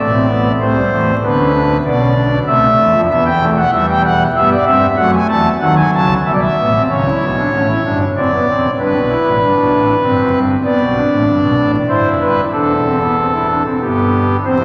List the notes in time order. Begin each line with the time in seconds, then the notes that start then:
Already playing: A1 A2 A3 D5
0.13 C4
0.27 B3
0.60 C2 C3 A3 C5
0.76 G3
0.92 E2 E3 A3
1.23 D2 D3 B3 B4
1.38 C#4
1.54 D4
1.85 B1 B2 B3 D5
2.00 C#4
2.16 D4
2.46 C2 C3 A3 E5
2.79 E2 E3
2.94 F2 F3
3.10 E2 E3 B3 E5
3.26 G5
3.42 A3
3.58 F#5
3.72 E2 E3 G3 E5
3.89 G5
4.04 F#5
4.36 G2 G3 B3 E5
4.51 D5
4.66 G2 G3 C4 E5
4.97 F#2 F#3 A3 F#5
5.13 G#5
5.29 E2 E3 A5
5.61 D#2 D#3 F#3 F#5
5.77 G#5
5.94 C#2 C#3 A5
6.26 B1 B2 G3 E5
6.33 D5
6.40 E5
6.58 A1 A2 B3
6.75 C4
6.90 C#2 C#3 C#4 C#5
7.05 E4
7.21 B1 B2
7.37 D4
7.53 A1 A2 C#4
7.69 E4
7.84 G1 G2 D4
8.16 F#1 F#2 C4 D5
8.33 B3
8.49 E1 E2 C4
8.79 G1 G2 D4 B4
8.94 B1 B2
9.10 E4
9.25 A1 A2
9.41 G1 G2 D4
9.57 B1 B2
9.72 A1 A2
10.03 G1 G2 C4
10.18 F#1 F#2
10.35 G1 G2
10.63 G1 G2 B3 D5
10.80 B1 B2
10.96 D4
11.11 A1 A2
11.27 G1 G2
11.41 B1 B2
11.57 A1 A2
11.89 G1 G2 E4 C5
12.05 F1 F2
12.20 G1 G2 B4
12.52 E1 E2 D4 A4
12.85 C4
13.01 B3
13.18 C4
13.33 E4
13.50 D4
13.66 C4
13.81 G1 G2 B3 G4
14.45 E1 E2 C4 C5
14.60 E4